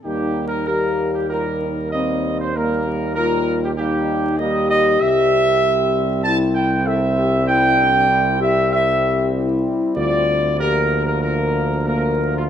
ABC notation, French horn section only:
X:1
M:4/4
L:1/8
Q:1/4=96
K:Cmix
V:1 name="French horn section"
_E2 G2 F E C2 | B, G F2 _E2 G2- | G4 E2 A G | E D E G3 E2 |
F2 G2 F D B,2 |]